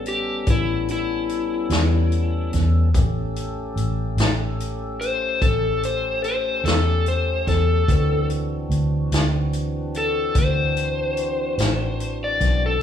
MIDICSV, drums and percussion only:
0, 0, Header, 1, 2, 480
1, 0, Start_track
1, 0, Tempo, 823045
1, 1716, Time_signature, 12, 3, 24, 8
1, 7480, End_track
2, 0, Start_track
2, 0, Title_t, "Drums"
2, 33, Note_on_c, 9, 42, 48
2, 91, Note_off_c, 9, 42, 0
2, 272, Note_on_c, 9, 42, 62
2, 275, Note_on_c, 9, 36, 89
2, 330, Note_off_c, 9, 42, 0
2, 333, Note_off_c, 9, 36, 0
2, 516, Note_on_c, 9, 42, 47
2, 574, Note_off_c, 9, 42, 0
2, 754, Note_on_c, 9, 42, 47
2, 813, Note_off_c, 9, 42, 0
2, 992, Note_on_c, 9, 42, 66
2, 1004, Note_on_c, 9, 38, 92
2, 1051, Note_off_c, 9, 42, 0
2, 1062, Note_off_c, 9, 38, 0
2, 1235, Note_on_c, 9, 42, 49
2, 1293, Note_off_c, 9, 42, 0
2, 1474, Note_on_c, 9, 42, 50
2, 1476, Note_on_c, 9, 36, 62
2, 1485, Note_on_c, 9, 38, 26
2, 1533, Note_off_c, 9, 42, 0
2, 1535, Note_off_c, 9, 36, 0
2, 1544, Note_off_c, 9, 38, 0
2, 1717, Note_on_c, 9, 36, 95
2, 1718, Note_on_c, 9, 42, 67
2, 1776, Note_off_c, 9, 36, 0
2, 1776, Note_off_c, 9, 42, 0
2, 1961, Note_on_c, 9, 42, 54
2, 2019, Note_off_c, 9, 42, 0
2, 2200, Note_on_c, 9, 42, 49
2, 2259, Note_off_c, 9, 42, 0
2, 2438, Note_on_c, 9, 42, 73
2, 2449, Note_on_c, 9, 38, 94
2, 2497, Note_off_c, 9, 42, 0
2, 2508, Note_off_c, 9, 38, 0
2, 2684, Note_on_c, 9, 42, 51
2, 2743, Note_off_c, 9, 42, 0
2, 2925, Note_on_c, 9, 42, 53
2, 2983, Note_off_c, 9, 42, 0
2, 3159, Note_on_c, 9, 36, 93
2, 3160, Note_on_c, 9, 42, 64
2, 3218, Note_off_c, 9, 36, 0
2, 3218, Note_off_c, 9, 42, 0
2, 3402, Note_on_c, 9, 42, 53
2, 3460, Note_off_c, 9, 42, 0
2, 3639, Note_on_c, 9, 42, 46
2, 3697, Note_off_c, 9, 42, 0
2, 3881, Note_on_c, 9, 42, 66
2, 3893, Note_on_c, 9, 38, 91
2, 3940, Note_off_c, 9, 42, 0
2, 3951, Note_off_c, 9, 38, 0
2, 4118, Note_on_c, 9, 42, 46
2, 4176, Note_off_c, 9, 42, 0
2, 4358, Note_on_c, 9, 36, 62
2, 4359, Note_on_c, 9, 42, 48
2, 4370, Note_on_c, 9, 38, 27
2, 4417, Note_off_c, 9, 36, 0
2, 4417, Note_off_c, 9, 42, 0
2, 4428, Note_off_c, 9, 38, 0
2, 4598, Note_on_c, 9, 36, 95
2, 4600, Note_on_c, 9, 42, 66
2, 4656, Note_off_c, 9, 36, 0
2, 4658, Note_off_c, 9, 42, 0
2, 4839, Note_on_c, 9, 42, 51
2, 4897, Note_off_c, 9, 42, 0
2, 5082, Note_on_c, 9, 42, 47
2, 5140, Note_off_c, 9, 42, 0
2, 5319, Note_on_c, 9, 42, 78
2, 5330, Note_on_c, 9, 38, 89
2, 5377, Note_off_c, 9, 42, 0
2, 5388, Note_off_c, 9, 38, 0
2, 5559, Note_on_c, 9, 42, 51
2, 5617, Note_off_c, 9, 42, 0
2, 5800, Note_on_c, 9, 42, 52
2, 5858, Note_off_c, 9, 42, 0
2, 6036, Note_on_c, 9, 42, 74
2, 6037, Note_on_c, 9, 36, 93
2, 6095, Note_off_c, 9, 36, 0
2, 6095, Note_off_c, 9, 42, 0
2, 6279, Note_on_c, 9, 42, 56
2, 6337, Note_off_c, 9, 42, 0
2, 6514, Note_on_c, 9, 42, 54
2, 6572, Note_off_c, 9, 42, 0
2, 6756, Note_on_c, 9, 42, 68
2, 6767, Note_on_c, 9, 38, 86
2, 6815, Note_off_c, 9, 42, 0
2, 6826, Note_off_c, 9, 38, 0
2, 6999, Note_on_c, 9, 42, 48
2, 7058, Note_off_c, 9, 42, 0
2, 7236, Note_on_c, 9, 36, 59
2, 7237, Note_on_c, 9, 42, 53
2, 7248, Note_on_c, 9, 38, 27
2, 7294, Note_off_c, 9, 36, 0
2, 7295, Note_off_c, 9, 42, 0
2, 7306, Note_off_c, 9, 38, 0
2, 7480, End_track
0, 0, End_of_file